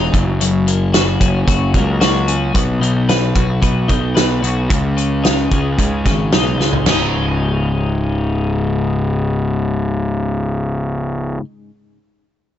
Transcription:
Already playing: clean electric guitar E3 G#3 B3 D#4
0.13 picked electric bass F#1, clean electric guitar F#2, kick, closed hi-hat
0.41 clean electric guitar F#2, closed hi-hat
0.67 clean electric guitar A#3, closed hi-hat
0.94 clean electric guitar F#4, snare, closed hi-hat
1.21 picked electric bass F#1, clean electric guitar C#4, kick, closed hi-hat
1.47 picked electric bass F#1, clean electric guitar F#3, kick, closed hi-hat
1.74 picked electric bass C#2, clean electric guitar A#3, kick, closed hi-hat
2.01 clean electric guitar F#4, snare, closed hi-hat
2.28 clean electric guitar C#4, closed hi-hat
2.54 picked electric bass B1, clean electric guitar B2, kick, closed hi-hat
2.81 picked electric bass B1, clean electric guitar D#4, closed hi-hat
3.09 clean electric guitar B4, snare, closed hi-hat
3.35 picked electric bass B1, clean electric guitar F#4, kick, closed hi-hat
3.62 picked electric bass B1, clean electric guitar B3, kick, closed hi-hat
3.88 picked electric bass B1, clean electric guitar D#4, kick, closed hi-hat
4.15 clean electric guitar B4, snare, closed hi-hat
4.42 picked electric bass B1, clean electric guitar F#4, closed hi-hat
4.70 clean electric guitar C#2, picked electric bass C#2, kick, closed hi-hat
4.97 clean electric guitar C#3, closed hi-hat
5.24 clean electric guitar D#4, snare, closed hi-hat
5.51 picked electric bass C#2, clean electric guitar G#3, kick, closed hi-hat
5.78 picked electric bass C#2, clean electric guitar G#2, kick, closed hi-hat
6.05 picked electric bass G#1, clean electric guitar C#3, kick, snare, closed hi-hat
6.32 picked electric bass B1, clean electric guitar D#4, snare, closed hi-hat
6.59 picked electric bass C#2, clean electric guitar G#3, snare
6.73 floor tom
6.86 picked electric bass C#1, clean electric guitar C#2 G#2 C#3 G#3, snare, floor tom, china
6.90 clean electric guitar D#4

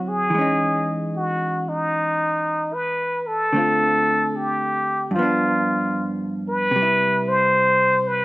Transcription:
Already playing: hollow-body jazz guitar D3 F#3 C4 E4
0.08 muted trumpet G#4
0.30 hollow-body jazz guitar E3
0.34 hollow-body jazz guitar G#3
0.38 hollow-body jazz guitar C#4 D#4
1.16 muted trumpet F#4
1.69 muted trumpet D#4
2.74 muted trumpet B4
3.27 muted trumpet A4
3.53 hollow-body jazz guitar D3 A3 C4
3.58 hollow-body jazz guitar F4
4.36 muted trumpet G4
5.11 hollow-body jazz guitar G2, muted trumpet F4
5.16 hollow-body jazz guitar F3 B3
5.22 hollow-body jazz guitar D4
6.49 muted trumpet B4
6.71 hollow-body jazz guitar C3
6.76 hollow-body jazz guitar G3
6.82 hollow-body jazz guitar E4
7.28 muted trumpet C5
8.08 muted trumpet B4

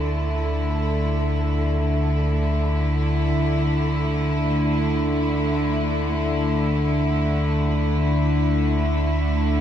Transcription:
Already playing: synth drone D2 D3, cello section D3 A3 E4, synth texture A4
3.34 synth drone D2 D3

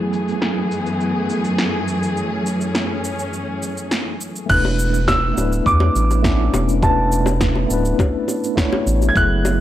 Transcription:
Already playing: string section F#2 E3 A3 B3 G#4, tine electric piano F#3 A3 B3 E4 G#4
0.13 cabasa
0.28 cabasa
0.42 snare, cabasa
0.72 cabasa
0.86 cabasa
1.01 cabasa
1.30 cabasa
1.45 cabasa
1.58 snare, cabasa
1.88 cabasa
2.03 cabasa
2.16 string section C#4, cabasa
2.46 cabasa
2.61 cabasa
2.75 snare, cabasa
3.04 cabasa
3.19 cabasa
3.33 cabasa
3.63 cabasa
3.78 cabasa
3.91 snare, cabasa
4.21 cabasa
4.36 cabasa
4.46 analog synth bass E1, tine electric piano A3 B3 D4, grand piano F#6, kick, crash
4.50 tine electric piano E4 B4, cabasa
4.65 high bongo
4.79 cabasa
4.94 cabasa
5.08 grand piano E6, kick, snare, high bongo, cabasa
5.33 analog synth bass D1, tine electric piano A3 B3 D4
5.38 tine electric piano E4 B4, high bongo, cabasa
5.53 cabasa
5.66 analog synth bass E2, grand piano D6, kick, cabasa
5.80 high bongo
5.95 analog synth bass A1, cabasa
6.11 high bongo, cabasa
6.22 tine electric piano A3 B3 C#4 D4 E4, kick, snare, cabasa
6.53 analog synth bass E1, high bongo, cabasa
6.69 cabasa
6.79 tine electric piano A3 B3 D4, grand piano A5, kick, high bongo, cabasa
6.84 tine electric piano E4 B4
7.12 cabasa
7.26 high bongo, cabasa
7.41 kick, snare, cabasa
7.56 high bongo
7.66 analog synth bass D1, tine electric piano A3 B3 D4
7.70 tine electric piano E4 B4, cabasa
7.85 cabasa
7.99 kick, high bongo, cabasa
8.28 high bongo, cabasa
8.44 cabasa
8.56 tine electric piano A3 B3 D4 E4 C#5, kick, snare, cabasa
8.73 high bongo
8.87 analog synth bass A1, cabasa
9.02 high bongo, cabasa
9.09 tine electric piano F#3, grand piano G#6
9.14 analog synth bass F#1, tine electric piano A3 B3 E4, grand piano F#6, kick, cabasa
9.19 tine electric piano G#4
9.45 high bongo, cabasa

